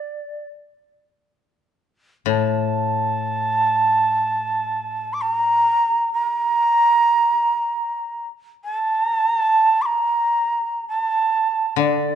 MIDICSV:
0, 0, Header, 1, 3, 480
1, 0, Start_track
1, 0, Tempo, 500000
1, 11665, End_track
2, 0, Start_track
2, 0, Title_t, "Shakuhachi"
2, 0, Program_c, 0, 77
2, 0, Note_on_c, 0, 74, 60
2, 451, Note_off_c, 0, 74, 0
2, 2195, Note_on_c, 0, 81, 75
2, 4925, Note_on_c, 0, 86, 54
2, 4939, Note_off_c, 0, 81, 0
2, 5003, Note_on_c, 0, 82, 73
2, 5017, Note_off_c, 0, 86, 0
2, 5882, Note_off_c, 0, 82, 0
2, 5888, Note_on_c, 0, 82, 76
2, 7937, Note_off_c, 0, 82, 0
2, 8297, Note_on_c, 0, 81, 68
2, 9422, Note_on_c, 0, 86, 61
2, 9437, Note_off_c, 0, 81, 0
2, 9458, Note_on_c, 0, 82, 66
2, 9468, Note_off_c, 0, 86, 0
2, 10439, Note_off_c, 0, 82, 0
2, 10445, Note_on_c, 0, 82, 59
2, 10560, Note_off_c, 0, 82, 0
2, 10560, Note_on_c, 0, 81, 59
2, 11269, Note_off_c, 0, 81, 0
2, 11312, Note_on_c, 0, 74, 54
2, 11665, Note_off_c, 0, 74, 0
2, 11665, End_track
3, 0, Start_track
3, 0, Title_t, "Koto"
3, 0, Program_c, 1, 107
3, 2167, Note_on_c, 1, 45, 40
3, 5412, Note_off_c, 1, 45, 0
3, 11293, Note_on_c, 1, 50, 37
3, 11665, Note_off_c, 1, 50, 0
3, 11665, End_track
0, 0, End_of_file